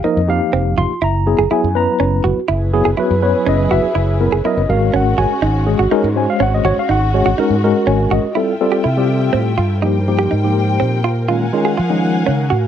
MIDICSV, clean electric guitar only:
0, 0, Header, 1, 2, 480
1, 0, Start_track
1, 0, Tempo, 488998
1, 1005, Time_signature, 6, 3, 24, 8
1, 12442, End_track
2, 0, Start_track
2, 0, Title_t, "Clean electric guitar"
2, 0, Program_c, 0, 27
2, 41, Note_on_c, 0, 63, 90
2, 254, Note_off_c, 0, 63, 0
2, 521, Note_on_c, 0, 60, 80
2, 735, Note_off_c, 0, 60, 0
2, 762, Note_on_c, 0, 65, 77
2, 976, Note_off_c, 0, 65, 0
2, 1000, Note_on_c, 0, 64, 85
2, 1214, Note_off_c, 0, 64, 0
2, 1360, Note_on_c, 0, 68, 69
2, 1469, Note_off_c, 0, 68, 0
2, 1481, Note_on_c, 0, 64, 77
2, 1696, Note_off_c, 0, 64, 0
2, 1962, Note_on_c, 0, 61, 82
2, 2176, Note_off_c, 0, 61, 0
2, 2199, Note_on_c, 0, 66, 77
2, 2415, Note_off_c, 0, 66, 0
2, 2438, Note_on_c, 0, 64, 90
2, 2654, Note_off_c, 0, 64, 0
2, 2800, Note_on_c, 0, 68, 73
2, 2909, Note_off_c, 0, 68, 0
2, 2919, Note_on_c, 0, 64, 82
2, 3135, Note_off_c, 0, 64, 0
2, 3401, Note_on_c, 0, 61, 89
2, 3616, Note_off_c, 0, 61, 0
2, 3641, Note_on_c, 0, 66, 76
2, 3856, Note_off_c, 0, 66, 0
2, 3879, Note_on_c, 0, 64, 85
2, 4095, Note_off_c, 0, 64, 0
2, 4245, Note_on_c, 0, 68, 73
2, 4352, Note_off_c, 0, 68, 0
2, 4368, Note_on_c, 0, 64, 88
2, 4580, Note_off_c, 0, 64, 0
2, 4845, Note_on_c, 0, 61, 86
2, 5058, Note_off_c, 0, 61, 0
2, 5084, Note_on_c, 0, 66, 78
2, 5297, Note_off_c, 0, 66, 0
2, 5323, Note_on_c, 0, 63, 94
2, 5536, Note_off_c, 0, 63, 0
2, 5685, Note_on_c, 0, 66, 67
2, 5792, Note_off_c, 0, 66, 0
2, 5805, Note_on_c, 0, 63, 89
2, 6018, Note_off_c, 0, 63, 0
2, 6283, Note_on_c, 0, 61, 90
2, 6496, Note_off_c, 0, 61, 0
2, 6525, Note_on_c, 0, 66, 82
2, 6737, Note_off_c, 0, 66, 0
2, 6763, Note_on_c, 0, 63, 94
2, 6976, Note_off_c, 0, 63, 0
2, 7125, Note_on_c, 0, 66, 76
2, 7231, Note_off_c, 0, 66, 0
2, 7245, Note_on_c, 0, 63, 94
2, 7457, Note_off_c, 0, 63, 0
2, 7725, Note_on_c, 0, 61, 89
2, 7937, Note_off_c, 0, 61, 0
2, 7964, Note_on_c, 0, 66, 85
2, 8176, Note_off_c, 0, 66, 0
2, 8199, Note_on_c, 0, 64, 82
2, 8413, Note_off_c, 0, 64, 0
2, 8557, Note_on_c, 0, 67, 64
2, 8666, Note_off_c, 0, 67, 0
2, 8677, Note_on_c, 0, 64, 76
2, 8892, Note_off_c, 0, 64, 0
2, 9157, Note_on_c, 0, 60, 81
2, 9372, Note_off_c, 0, 60, 0
2, 9401, Note_on_c, 0, 65, 80
2, 9614, Note_off_c, 0, 65, 0
2, 9642, Note_on_c, 0, 63, 84
2, 9854, Note_off_c, 0, 63, 0
2, 9999, Note_on_c, 0, 67, 72
2, 10106, Note_off_c, 0, 67, 0
2, 10119, Note_on_c, 0, 63, 82
2, 10332, Note_off_c, 0, 63, 0
2, 10599, Note_on_c, 0, 60, 73
2, 10812, Note_off_c, 0, 60, 0
2, 10839, Note_on_c, 0, 65, 81
2, 11052, Note_off_c, 0, 65, 0
2, 11078, Note_on_c, 0, 65, 83
2, 11291, Note_off_c, 0, 65, 0
2, 11436, Note_on_c, 0, 68, 73
2, 11544, Note_off_c, 0, 68, 0
2, 11558, Note_on_c, 0, 65, 81
2, 11771, Note_off_c, 0, 65, 0
2, 12039, Note_on_c, 0, 61, 90
2, 12251, Note_off_c, 0, 61, 0
2, 12272, Note_on_c, 0, 66, 79
2, 12442, Note_off_c, 0, 66, 0
2, 12442, End_track
0, 0, End_of_file